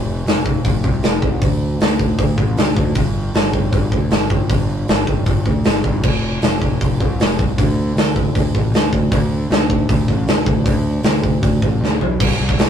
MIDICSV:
0, 0, Header, 1, 3, 480
1, 0, Start_track
1, 0, Tempo, 384862
1, 1775, Time_signature, 4, 2, 24, 8
1, 15833, End_track
2, 0, Start_track
2, 0, Title_t, "Picked electric bass"
2, 0, Program_c, 0, 34
2, 0, Note_on_c, 0, 29, 92
2, 273, Note_off_c, 0, 29, 0
2, 324, Note_on_c, 0, 29, 92
2, 747, Note_off_c, 0, 29, 0
2, 808, Note_on_c, 0, 29, 87
2, 1020, Note_off_c, 0, 29, 0
2, 1049, Note_on_c, 0, 36, 80
2, 1261, Note_off_c, 0, 36, 0
2, 1302, Note_on_c, 0, 29, 84
2, 1508, Note_off_c, 0, 29, 0
2, 1523, Note_on_c, 0, 36, 90
2, 1764, Note_off_c, 0, 36, 0
2, 1764, Note_on_c, 0, 38, 89
2, 2186, Note_off_c, 0, 38, 0
2, 2259, Note_on_c, 0, 38, 89
2, 2675, Note_off_c, 0, 38, 0
2, 2729, Note_on_c, 0, 38, 86
2, 2940, Note_off_c, 0, 38, 0
2, 2963, Note_on_c, 0, 33, 81
2, 3177, Note_off_c, 0, 33, 0
2, 3209, Note_on_c, 0, 38, 89
2, 3420, Note_off_c, 0, 38, 0
2, 3449, Note_on_c, 0, 38, 92
2, 3660, Note_off_c, 0, 38, 0
2, 3686, Note_on_c, 0, 31, 92
2, 4107, Note_off_c, 0, 31, 0
2, 4166, Note_on_c, 0, 31, 92
2, 4587, Note_off_c, 0, 31, 0
2, 4643, Note_on_c, 0, 31, 89
2, 4857, Note_off_c, 0, 31, 0
2, 4885, Note_on_c, 0, 38, 82
2, 5098, Note_off_c, 0, 38, 0
2, 5121, Note_on_c, 0, 31, 89
2, 5336, Note_off_c, 0, 31, 0
2, 5360, Note_on_c, 0, 31, 89
2, 5575, Note_off_c, 0, 31, 0
2, 5607, Note_on_c, 0, 31, 95
2, 6028, Note_off_c, 0, 31, 0
2, 6099, Note_on_c, 0, 31, 87
2, 6515, Note_off_c, 0, 31, 0
2, 6561, Note_on_c, 0, 31, 88
2, 6775, Note_off_c, 0, 31, 0
2, 6808, Note_on_c, 0, 38, 84
2, 7019, Note_off_c, 0, 38, 0
2, 7056, Note_on_c, 0, 31, 90
2, 7264, Note_off_c, 0, 31, 0
2, 7287, Note_on_c, 0, 31, 94
2, 7521, Note_off_c, 0, 31, 0
2, 7521, Note_on_c, 0, 29, 89
2, 7945, Note_off_c, 0, 29, 0
2, 8016, Note_on_c, 0, 29, 86
2, 8433, Note_off_c, 0, 29, 0
2, 8496, Note_on_c, 0, 29, 91
2, 8704, Note_off_c, 0, 29, 0
2, 8735, Note_on_c, 0, 36, 85
2, 8944, Note_off_c, 0, 36, 0
2, 8981, Note_on_c, 0, 29, 87
2, 9187, Note_off_c, 0, 29, 0
2, 9216, Note_on_c, 0, 36, 85
2, 9424, Note_off_c, 0, 36, 0
2, 9461, Note_on_c, 0, 38, 95
2, 9876, Note_off_c, 0, 38, 0
2, 9927, Note_on_c, 0, 38, 87
2, 10348, Note_off_c, 0, 38, 0
2, 10419, Note_on_c, 0, 38, 91
2, 10626, Note_off_c, 0, 38, 0
2, 10658, Note_on_c, 0, 33, 94
2, 10865, Note_off_c, 0, 33, 0
2, 10887, Note_on_c, 0, 38, 83
2, 11099, Note_off_c, 0, 38, 0
2, 11131, Note_on_c, 0, 38, 88
2, 11342, Note_off_c, 0, 38, 0
2, 11365, Note_on_c, 0, 38, 97
2, 11788, Note_off_c, 0, 38, 0
2, 11854, Note_on_c, 0, 38, 93
2, 12273, Note_off_c, 0, 38, 0
2, 12338, Note_on_c, 0, 38, 97
2, 12546, Note_off_c, 0, 38, 0
2, 12571, Note_on_c, 0, 33, 92
2, 12782, Note_off_c, 0, 33, 0
2, 12799, Note_on_c, 0, 38, 86
2, 13015, Note_off_c, 0, 38, 0
2, 13058, Note_on_c, 0, 38, 90
2, 13266, Note_off_c, 0, 38, 0
2, 13289, Note_on_c, 0, 38, 92
2, 13710, Note_off_c, 0, 38, 0
2, 13769, Note_on_c, 0, 38, 99
2, 14190, Note_off_c, 0, 38, 0
2, 14251, Note_on_c, 0, 38, 96
2, 14462, Note_off_c, 0, 38, 0
2, 14493, Note_on_c, 0, 33, 82
2, 14703, Note_off_c, 0, 33, 0
2, 14734, Note_on_c, 0, 38, 85
2, 14943, Note_off_c, 0, 38, 0
2, 14980, Note_on_c, 0, 35, 87
2, 15187, Note_off_c, 0, 35, 0
2, 15221, Note_on_c, 0, 36, 100
2, 15374, Note_off_c, 0, 36, 0
2, 15459, Note_on_c, 0, 36, 93
2, 15613, Note_off_c, 0, 36, 0
2, 15686, Note_on_c, 0, 36, 94
2, 15833, Note_off_c, 0, 36, 0
2, 15833, End_track
3, 0, Start_track
3, 0, Title_t, "Drums"
3, 338, Note_on_c, 9, 46, 64
3, 353, Note_on_c, 9, 38, 114
3, 462, Note_off_c, 9, 46, 0
3, 477, Note_off_c, 9, 38, 0
3, 569, Note_on_c, 9, 36, 84
3, 694, Note_off_c, 9, 36, 0
3, 808, Note_on_c, 9, 36, 106
3, 809, Note_on_c, 9, 46, 62
3, 933, Note_off_c, 9, 36, 0
3, 934, Note_off_c, 9, 46, 0
3, 1048, Note_on_c, 9, 36, 88
3, 1173, Note_off_c, 9, 36, 0
3, 1281, Note_on_c, 9, 46, 61
3, 1296, Note_on_c, 9, 38, 118
3, 1406, Note_off_c, 9, 46, 0
3, 1421, Note_off_c, 9, 38, 0
3, 1525, Note_on_c, 9, 36, 90
3, 1650, Note_off_c, 9, 36, 0
3, 1767, Note_on_c, 9, 36, 115
3, 1771, Note_on_c, 9, 46, 63
3, 1892, Note_off_c, 9, 36, 0
3, 1896, Note_off_c, 9, 46, 0
3, 2251, Note_on_c, 9, 46, 61
3, 2266, Note_on_c, 9, 38, 112
3, 2376, Note_off_c, 9, 46, 0
3, 2391, Note_off_c, 9, 38, 0
3, 2487, Note_on_c, 9, 36, 87
3, 2612, Note_off_c, 9, 36, 0
3, 2727, Note_on_c, 9, 36, 105
3, 2729, Note_on_c, 9, 46, 54
3, 2851, Note_off_c, 9, 36, 0
3, 2854, Note_off_c, 9, 46, 0
3, 2966, Note_on_c, 9, 36, 84
3, 3091, Note_off_c, 9, 36, 0
3, 3210, Note_on_c, 9, 46, 58
3, 3225, Note_on_c, 9, 38, 116
3, 3335, Note_off_c, 9, 46, 0
3, 3350, Note_off_c, 9, 38, 0
3, 3449, Note_on_c, 9, 36, 91
3, 3574, Note_off_c, 9, 36, 0
3, 3678, Note_on_c, 9, 46, 65
3, 3685, Note_on_c, 9, 36, 119
3, 3802, Note_off_c, 9, 46, 0
3, 3810, Note_off_c, 9, 36, 0
3, 4171, Note_on_c, 9, 46, 61
3, 4185, Note_on_c, 9, 38, 116
3, 4295, Note_off_c, 9, 46, 0
3, 4310, Note_off_c, 9, 38, 0
3, 4408, Note_on_c, 9, 36, 82
3, 4533, Note_off_c, 9, 36, 0
3, 4647, Note_on_c, 9, 46, 59
3, 4648, Note_on_c, 9, 36, 100
3, 4771, Note_off_c, 9, 46, 0
3, 4772, Note_off_c, 9, 36, 0
3, 4889, Note_on_c, 9, 36, 86
3, 5013, Note_off_c, 9, 36, 0
3, 5121, Note_on_c, 9, 46, 66
3, 5135, Note_on_c, 9, 38, 119
3, 5245, Note_off_c, 9, 46, 0
3, 5260, Note_off_c, 9, 38, 0
3, 5366, Note_on_c, 9, 36, 91
3, 5490, Note_off_c, 9, 36, 0
3, 5606, Note_on_c, 9, 46, 62
3, 5607, Note_on_c, 9, 36, 123
3, 5730, Note_off_c, 9, 46, 0
3, 5732, Note_off_c, 9, 36, 0
3, 6087, Note_on_c, 9, 46, 59
3, 6102, Note_on_c, 9, 38, 112
3, 6212, Note_off_c, 9, 46, 0
3, 6227, Note_off_c, 9, 38, 0
3, 6326, Note_on_c, 9, 36, 87
3, 6451, Note_off_c, 9, 36, 0
3, 6557, Note_on_c, 9, 46, 55
3, 6565, Note_on_c, 9, 36, 103
3, 6682, Note_off_c, 9, 46, 0
3, 6690, Note_off_c, 9, 36, 0
3, 6805, Note_on_c, 9, 36, 80
3, 6930, Note_off_c, 9, 36, 0
3, 7039, Note_on_c, 9, 46, 57
3, 7054, Note_on_c, 9, 38, 115
3, 7163, Note_off_c, 9, 46, 0
3, 7178, Note_off_c, 9, 38, 0
3, 7285, Note_on_c, 9, 36, 84
3, 7410, Note_off_c, 9, 36, 0
3, 7528, Note_on_c, 9, 36, 121
3, 7528, Note_on_c, 9, 49, 99
3, 7653, Note_off_c, 9, 36, 0
3, 7653, Note_off_c, 9, 49, 0
3, 8005, Note_on_c, 9, 46, 61
3, 8020, Note_on_c, 9, 38, 114
3, 8130, Note_off_c, 9, 46, 0
3, 8145, Note_off_c, 9, 38, 0
3, 8252, Note_on_c, 9, 36, 88
3, 8376, Note_off_c, 9, 36, 0
3, 8495, Note_on_c, 9, 36, 101
3, 8497, Note_on_c, 9, 46, 52
3, 8620, Note_off_c, 9, 36, 0
3, 8621, Note_off_c, 9, 46, 0
3, 8736, Note_on_c, 9, 36, 84
3, 8860, Note_off_c, 9, 36, 0
3, 8979, Note_on_c, 9, 46, 63
3, 8994, Note_on_c, 9, 38, 114
3, 9103, Note_off_c, 9, 46, 0
3, 9118, Note_off_c, 9, 38, 0
3, 9217, Note_on_c, 9, 36, 90
3, 9342, Note_off_c, 9, 36, 0
3, 9458, Note_on_c, 9, 36, 114
3, 9463, Note_on_c, 9, 46, 63
3, 9583, Note_off_c, 9, 36, 0
3, 9588, Note_off_c, 9, 46, 0
3, 9941, Note_on_c, 9, 46, 63
3, 9956, Note_on_c, 9, 38, 115
3, 10066, Note_off_c, 9, 46, 0
3, 10081, Note_off_c, 9, 38, 0
3, 10177, Note_on_c, 9, 36, 93
3, 10301, Note_off_c, 9, 36, 0
3, 10417, Note_on_c, 9, 36, 97
3, 10423, Note_on_c, 9, 46, 62
3, 10542, Note_off_c, 9, 36, 0
3, 10547, Note_off_c, 9, 46, 0
3, 10660, Note_on_c, 9, 36, 85
3, 10785, Note_off_c, 9, 36, 0
3, 10900, Note_on_c, 9, 46, 64
3, 10915, Note_on_c, 9, 38, 112
3, 11025, Note_off_c, 9, 46, 0
3, 11039, Note_off_c, 9, 38, 0
3, 11134, Note_on_c, 9, 36, 86
3, 11259, Note_off_c, 9, 36, 0
3, 11370, Note_on_c, 9, 46, 62
3, 11373, Note_on_c, 9, 36, 122
3, 11495, Note_off_c, 9, 46, 0
3, 11497, Note_off_c, 9, 36, 0
3, 11859, Note_on_c, 9, 46, 57
3, 11874, Note_on_c, 9, 38, 115
3, 11984, Note_off_c, 9, 46, 0
3, 11999, Note_off_c, 9, 38, 0
3, 12096, Note_on_c, 9, 36, 95
3, 12220, Note_off_c, 9, 36, 0
3, 12336, Note_on_c, 9, 36, 107
3, 12339, Note_on_c, 9, 46, 57
3, 12461, Note_off_c, 9, 36, 0
3, 12464, Note_off_c, 9, 46, 0
3, 12575, Note_on_c, 9, 36, 78
3, 12699, Note_off_c, 9, 36, 0
3, 12816, Note_on_c, 9, 46, 57
3, 12831, Note_on_c, 9, 38, 113
3, 12940, Note_off_c, 9, 46, 0
3, 12955, Note_off_c, 9, 38, 0
3, 13051, Note_on_c, 9, 36, 100
3, 13176, Note_off_c, 9, 36, 0
3, 13292, Note_on_c, 9, 36, 107
3, 13296, Note_on_c, 9, 46, 63
3, 13417, Note_off_c, 9, 36, 0
3, 13420, Note_off_c, 9, 46, 0
3, 13760, Note_on_c, 9, 46, 64
3, 13775, Note_on_c, 9, 38, 112
3, 13885, Note_off_c, 9, 46, 0
3, 13900, Note_off_c, 9, 38, 0
3, 14013, Note_on_c, 9, 36, 82
3, 14137, Note_off_c, 9, 36, 0
3, 14254, Note_on_c, 9, 46, 59
3, 14255, Note_on_c, 9, 36, 109
3, 14379, Note_off_c, 9, 36, 0
3, 14379, Note_off_c, 9, 46, 0
3, 14497, Note_on_c, 9, 36, 88
3, 14621, Note_off_c, 9, 36, 0
3, 14763, Note_on_c, 9, 38, 63
3, 14888, Note_off_c, 9, 38, 0
3, 14982, Note_on_c, 9, 43, 88
3, 15107, Note_off_c, 9, 43, 0
3, 15219, Note_on_c, 9, 36, 122
3, 15221, Note_on_c, 9, 49, 127
3, 15344, Note_off_c, 9, 36, 0
3, 15346, Note_off_c, 9, 49, 0
3, 15576, Note_on_c, 9, 36, 94
3, 15698, Note_on_c, 9, 46, 68
3, 15701, Note_off_c, 9, 36, 0
3, 15713, Note_on_c, 9, 38, 127
3, 15823, Note_off_c, 9, 46, 0
3, 15833, Note_off_c, 9, 38, 0
3, 15833, End_track
0, 0, End_of_file